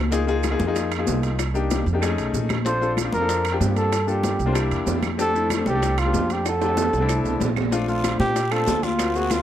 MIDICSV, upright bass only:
0, 0, Header, 1, 2, 480
1, 0, Start_track
1, 0, Key_signature, -1, "major"
1, 0, Tempo, 316790
1, 182, Time_signature, 4, 2, 24, 8
1, 14273, End_track
2, 0, Start_track
2, 0, Title_t, "Upright bass"
2, 0, Program_c, 0, 32
2, 0, Note_on_c, 0, 37, 77
2, 817, Note_off_c, 0, 37, 0
2, 903, Note_on_c, 0, 41, 85
2, 1573, Note_off_c, 0, 41, 0
2, 1628, Note_on_c, 0, 36, 78
2, 2742, Note_off_c, 0, 36, 0
2, 2821, Note_on_c, 0, 41, 89
2, 3269, Note_off_c, 0, 41, 0
2, 3302, Note_on_c, 0, 35, 55
2, 3526, Note_off_c, 0, 35, 0
2, 3538, Note_on_c, 0, 34, 79
2, 4657, Note_off_c, 0, 34, 0
2, 4737, Note_on_c, 0, 41, 79
2, 5410, Note_off_c, 0, 41, 0
2, 5458, Note_on_c, 0, 43, 75
2, 6577, Note_off_c, 0, 43, 0
2, 6655, Note_on_c, 0, 36, 92
2, 7106, Note_off_c, 0, 36, 0
2, 7134, Note_on_c, 0, 40, 64
2, 7362, Note_off_c, 0, 40, 0
2, 7374, Note_on_c, 0, 41, 73
2, 8495, Note_off_c, 0, 41, 0
2, 8579, Note_on_c, 0, 36, 85
2, 9251, Note_off_c, 0, 36, 0
2, 9299, Note_on_c, 0, 41, 84
2, 10416, Note_off_c, 0, 41, 0
2, 10502, Note_on_c, 0, 36, 85
2, 10949, Note_off_c, 0, 36, 0
2, 10974, Note_on_c, 0, 36, 55
2, 11201, Note_off_c, 0, 36, 0
2, 11213, Note_on_c, 0, 34, 82
2, 12333, Note_off_c, 0, 34, 0
2, 12416, Note_on_c, 0, 46, 91
2, 13088, Note_off_c, 0, 46, 0
2, 13138, Note_on_c, 0, 38, 85
2, 14253, Note_off_c, 0, 38, 0
2, 14273, End_track
0, 0, End_of_file